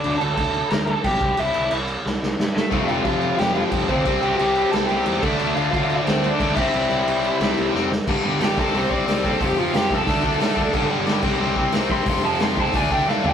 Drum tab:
CC |xxxxxxxx|xxxx----|xxxxxxxx|xxxxxxxx|
HH |--------|--------|--------|--------|
SD |----o---|----oooo|----o---|----o---|
FT |--------|--------|--------|--------|
BD |--o---oo|--------|o-o---oo|o------o|

CC |xxxxxxxx|xxxxxx--|x-------|--------|
HH |--------|--------|--o-o-o-|o-o-o-o-|
SD |----o---|----o-oo|--o---o-|--o---o-|
FT |--------|--------|--------|--------|
BD |--o---oo|--------|o--o-o-o|o--ooo-o|

CC |x--x----|--------|
HH |--o---o-|o-o-o---|
SD |--o---o-|--o---o-|
FT |--------|-------o|
BD |o--o-o-o|o--ooo--|